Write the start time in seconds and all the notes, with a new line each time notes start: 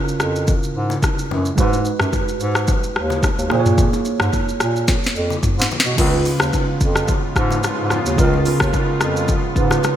Already playing: C#3 C#4 E4 F4 A#4
0.08 shaker
0.20 F2, cross-stick, shaker
0.36 shaker
0.47 kick, low conga, shaker
0.63 shaker
0.75 G#2
0.90 low bongo, shaker
1.03 kick, cross-stick, high bongo, shaker
1.19 shaker
1.30 F#2, high bongo, low bongo, low conga
1.45 shaker
1.55 G#2 G#3 D#4 F#4, kick, low conga, shaker
1.60 B4
1.73 high bongo, shaker
1.85 shaker
2.00 F#2, cross-stick, mid tom, shaker
2.13 kick, high bongo, shaker
2.28 shaker
2.40 G#2, shaker
2.55 cross-stick, shaker
2.67 kick, low conga, shaker
2.83 shaker
2.95 D#2, cross-stick
3.10 low bongo, shaker
3.23 kick, cross-stick, high bongo, shaker
3.38 D#2, shaker
3.48 A#2 A#3 F4 G#4, cross-stick, high bongo, low bongo, low conga
3.53 C5
3.60 C#5
3.66 mid tom, shaker
3.78 kick, low conga, shaker
3.93 high bongo, shaker
4.05 shaker
4.20 G#2, cross-stick, mid tom, shaker
4.33 kick, high bongo, shaker
4.49 shaker
4.60 A#2, cross-stick, shaker
4.76 shaker
4.88 kick, snare, low conga, shaker
5.04 snare, shaker
5.16 F2, shaker
5.30 low bongo, shaker
5.43 kick, mid tom, high bongo, shaker
5.58 G#2, snare, shaker
5.71 low bongo, low conga, shaker
5.80 snare
5.86 B2, shaker
5.96 C#2 C#3 G#3 B3 C#4 F4, kick, crash, low conga, shaker
6.01 A#4
6.07 B4
6.14 high bongo
6.25 open hi-hat, low bongo, shaker
6.40 D#2, cross-stick, shaker
6.53 kick, high bongo, shaker
6.80 F2, kick, shaker
6.96 cross-stick, shaker
7.08 kick, low conga, shaker
7.36 G#2, kick, cross-stick, shaker
7.51 low bongo, shaker
7.63 cross-stick, high bongo, shaker
7.79 G#2
7.90 cross-stick, low bongo, low conga, shaker
8.06 D#2, shaker
8.16 C#2 C#3 C#4 F4, kick, low conga, shaker
8.21 A#4
8.34 high bongo
8.45 open hi-hat, low bongo, shaker
8.60 D#2, kick, cross-stick, shaker
8.73 kick, high bongo, shaker
9.01 F2, cross-stick, shaker
9.16 shaker
9.28 kick, low conga, shaker
9.55 G#2 C#3 C#4 F4 B4, kick, shaker
9.71 cross-stick, low bongo, shaker
9.83 cross-stick, high bongo, shaker